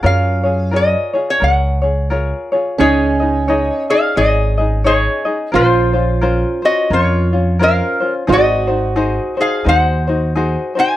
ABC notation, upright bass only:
X:1
M:4/4
L:1/8
Q:"Swing" 1/4=87
K:F#
V:1 name="Upright bass" clef=bass
F,,4 C,,4 | [K:Db] D,,4 A,,,4 | B,,,4 F,,4 | A,,,4 E,,4 |]